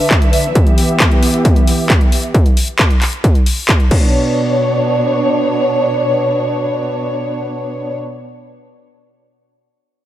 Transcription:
Already playing: string section D3 D4 B4 E5
0.11 kick, clap, closed hi-hat
0.22 closed hi-hat
0.33 open hi-hat
0.44 closed hi-hat
0.55 string section E3 B3 G4, kick, closed hi-hat
0.67 closed hi-hat
0.78 open hi-hat
0.89 closed hi-hat
1.00 kick, clap, closed hi-hat
1.11 closed hi-hat
1.23 open hi-hat
1.34 closed hi-hat
1.45 kick, closed hi-hat
1.56 closed hi-hat
1.67 open hi-hat
1.90 kick, clap, closed hi-hat
2.01 closed hi-hat
2.12 open hi-hat
2.23 closed hi-hat
2.35 kick, closed hi-hat
2.46 closed hi-hat
2.57 open hi-hat
2.68 closed hi-hat
2.79 kick, clap, closed hi-hat
2.90 closed hi-hat
3.02 clap, open hi-hat
3.13 closed hi-hat
3.24 kick, closed hi-hat
3.35 closed hi-hat
3.46 open hi-hat
3.69 kick, clap, closed hi-hat
3.80 closed hi-hat
3.91 string section B2 B3 D4 C#5, kick, crash

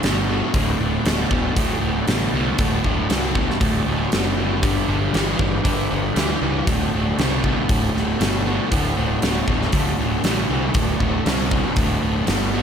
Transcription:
Already playing: tonewheel organ D4 F#4 A4 C5
0.03 picked electric bass G1, overdriven electric guitar D2 B2, snare, open hi-hat
0.29 overdriven electric guitar D2 B2
0.54 picked electric bass D1, overdriven electric guitar D2 A2, tonewheel organ G4 A#4 C#5 D#5, kick, open hi-hat
0.69 tonewheel organ F#4 A4 C5 D5
0.79 picked electric bass D1, overdriven electric guitar D2 A2
1.05 picked electric bass D1, overdriven electric guitar D2 B2, snare, open hi-hat
1.31 picked electric bass D1, overdriven electric guitar D2 B2, kick
1.55 overdriven electric guitar D2 A2, picked electric bass D2, kick, open hi-hat
1.81 picked electric bass D1, overdriven electric guitar D2 A2
2.07 picked electric bass A1, overdriven electric guitar D2 B2, snare, open hi-hat
2.33 picked electric bass C2, overdriven electric guitar D2 B2
2.58 picked electric bass D1, overdriven electric guitar D2 A2, kick, open hi-hat
2.84 picked electric bass D1, overdriven electric guitar D2 A2, kick
3.09 picked electric bass C2, overdriven electric guitar D2 B2, snare, open hi-hat
3.34 overdriven electric guitar D2 B2, kick
3.50 snare
3.60 picked electric bass D1, overdriven electric guitar D2 A2, kick, open hi-hat
3.86 picked electric bass D1, overdriven electric guitar D2 A2
4.12 picked electric bass F#1, overdriven electric guitar D2 B2, snare, open hi-hat
4.37 overdriven electric guitar D2 B2
4.62 picked electric bass G1, overdriven electric guitar G2 D3, tonewheel organ D4 F4 G4 B4, kick, open hi-hat
4.87 picked electric bass G1, overdriven electric guitar G2 D3
5.13 picked electric bass G1, overdriven electric guitar G2 E3, snare, open hi-hat
5.38 picked electric bass G1, overdriven electric guitar G2 E3, kick
5.64 overdriven electric guitar G2 D3, picked electric bass G2, kick, open hi-hat
5.90 picked electric bass G1, overdriven electric guitar G2 D3
6.16 picked electric bass D2, overdriven electric guitar G2 E3, snare, open hi-hat
6.41 picked electric bass C#2, overdriven electric guitar G2 E3
6.66 picked electric bass D1, overdriven electric guitar D2 A2, tonewheel organ D4 F#4 A4 C5, kick, open hi-hat
6.93 picked electric bass D1, overdriven electric guitar D2 A2
7.18 picked electric bass C2, overdriven electric guitar D2 B2, snare, open hi-hat
7.44 overdriven electric guitar D2 B2, kick
7.69 picked electric bass D1, overdriven electric guitar D2 A2, kick, open hi-hat
7.95 picked electric bass D1, overdriven electric guitar D2 A2, snare
8.20 picked electric bass G1, overdriven electric guitar D2 B2, snare, open hi-hat
8.46 overdriven electric guitar D2 B2
8.71 picked electric bass D1, overdriven electric guitar D2 A2, kick, open hi-hat
8.96 picked electric bass D1, overdriven electric guitar D2 A2
9.22 picked electric bass D1, overdriven electric guitar D2 B2, snare, open hi-hat
9.48 picked electric bass D1, overdriven electric guitar D2 B2, kick
9.61 snare
9.72 overdriven electric guitar D2 A2, picked electric bass D2, kick, open hi-hat
9.98 picked electric bass D1, overdriven electric guitar D2 A2
10.24 picked electric bass A1, overdriven electric guitar D2 B2, snare, open hi-hat
10.49 picked electric bass C2, overdriven electric guitar D2 B2
10.74 picked electric bass D1, overdriven electric guitar D2 A2, tonewheel organ C4 D4 F#4 A4, kick, open hi-hat
10.99 picked electric bass D1, overdriven electric guitar D2 A2, kick
11.25 picked electric bass C2, overdriven electric guitar D2 B2, snare, open hi-hat
11.51 overdriven electric guitar D2 B2, kick
11.76 picked electric bass D1, overdriven electric guitar D2 A2, kick, open hi-hat
12.02 picked electric bass D1, overdriven electric guitar D2 A2
12.26 picked electric bass G1, overdriven electric guitar D2 B2, snare, open hi-hat
12.52 overdriven electric guitar D2 B2

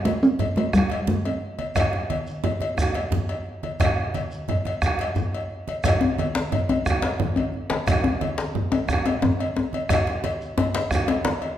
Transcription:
0.05 talking drum A3, cowbell, high conga
0.23 talking drum C4, shekere
0.39 cowbell, high conga, djembe bass, low conga
0.56 talking drum A3, cowbell, high conga
0.67 talking drum A3
0.73 talking drum G3, bombo rim, bombo low, djembe tone, shekere
0.90 cowbell, djembe slap
1.07 talking drum A3, high conga, djembe bass
1.25 talking drum C4, bombo rim, cowbell, djembe slap
1.41 djembe slap
1.59 cowbell, high conga
1.75 bombo rim, bombo low, cowbell, djembe tone, djembe bass, low conga, shekere
1.93 bombo rim, djembe slap, high conga
2.10 cowbell, high conga
2.27 shekere
2.44 cowbell, high conga, djembe bass, low conga
2.60 cowbell, high conga
2.77 bombo rim, bombo low, djembe tone, shekere
2.95 cowbell, djembe slap
3.11 high conga, djembe bass, low conga
3.29 bombo rim, cowbell, djembe slap
3.46 djembe slap
3.63 cowbell, high conga
3.80 bombo rim, bombo low, cowbell, djembe tone, djembe bass, low conga, shekere
4.14 cowbell, high conga, shekere
4.31 shekere
4.48 cowbell, djembe slap, djembe bass, low conga
4.65 bombo rim, cowbell, high conga
4.82 bombo rim, bombo low, djembe tone, shekere
4.99 bombo rim, cowbell, djembe slap, high conga, shekere
5.15 djembe bass, low conga, shekere
5.33 bombo rim, cowbell
5.68 cowbell, high conga
5.84 bombo rim, bombo low, cowbell, djembe tone, djembe bass, low conga, shekere
6.01 bombo rim, djembe slap, high conga, djembe bass
6.19 cowbell, high conga
6.35 djembe slap, shekere
6.52 cowbell, high conga, djembe bass, low conga
6.69 cowbell, high conga, djembe bass
6.86 bombo rim, bombo low, djembe tone, shekere
7.02 cowbell, djembe slap
7.19 high conga, djembe bass, low conga
7.36 bombo rim, cowbell, djembe slap, djembe bass
7.54 djembe slap
7.70 cowbell, djembe slap, high conga
7.87 bombo rim, bombo low, cowbell, djembe tone, djembe bass, low conga, shekere
8.04 bombo rim, djembe slap, high conga, djembe bass
8.21 cowbell, high conga
8.38 djembe slap, shekere
8.55 high conga, djembe bass, low conga
8.72 cowbell, djembe tone, high conga
8.88 bombo rim, bombo low, djembe tone, shekere
9.05 cowbell, djembe slap, djembe tone
9.22 djembe tone, high conga, djembe bass, low conga
9.39 bombo rim, cowbell, djembe slap
9.56 djembe slap, djembe tone
9.73 cowbell, high conga
9.89 bombo rim, bombo low, cowbell, djembe tone, djembe bass, low conga, shekere
10.06 bombo rim, djembe slap, high conga
10.24 cowbell, high conga
10.41 shekere
10.58 cowbell, djembe tone, high conga, djembe bass, low conga
10.75 cowbell, djembe slap, high conga
10.91 bombo rim, bombo low, djembe tone, shekere
11.08 cowbell, djembe slap, djembe tone
11.25 djembe slap, high conga, low conga
11.42 bombo rim, cowbell, djembe slap

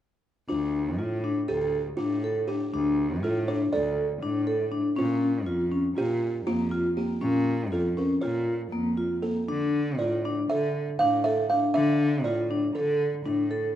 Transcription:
0.49 cello D2, vibraphone D4, kalimba F4
0.99 cello A2, vibraphone F4
1.24 vibraphone D4
1.48 cello D2, kalimba G4, vibraphone A4
1.97 cello A2, vibraphone D4, kalimba F4
2.24 vibraphone A4
2.48 vibraphone D4, kalimba G4
2.74 cello D2, vibraphone D4
3.23 cello A2, vibraphone F4, kalimba A4
3.48 vibraphone D4, kalimba C#5
3.73 cello D2, vibraphone A4, kalimba D5
4.22 cello A2, vibraphone D4
4.47 vibraphone A4
4.72 vibraphone D4
4.96 cello A#2, vibraphone C#4, kalimba F4
5.46 cello F2, vibraphone F4
5.72 vibraphone C#4
5.97 cello A#2, vibraphone F4, kalimba G4
6.47 cello F2, vibraphone A#3, kalimba F4
6.71 vibraphone F4
6.97 vibraphone A#3, kalimba G4
7.21 cello A#2, vibraphone C#4
7.72 cello F2, vibraphone F4, kalimba A4
7.97 vibraphone C#4, kalimba A#4
8.21 cello A#2, vibraphone F4, kalimba C#5
8.72 cello F2, vibraphone A#3
8.97 vibraphone F4
9.22 vibraphone A#3, kalimba A4
9.49 cello D3, vibraphone D4
9.99 cello A2, vibraphone F4, kalimba D5
10.25 vibraphone D4
10.50 cello D3, vibraphone A4, kalimba E5
10.99 cello A2, vibraphone D4, kalimba F5
11.24 vibraphone A4, kalimba E5
11.50 vibraphone D4, kalimba F5
11.74 cello D3, vibraphone D4, kalimba E5
12.24 cello A2, vibraphone F4, kalimba D5
12.51 vibraphone D4
12.75 cello D3, kalimba A4, vibraphone A4
13.26 cello A2, vibraphone D4
13.51 vibraphone A4

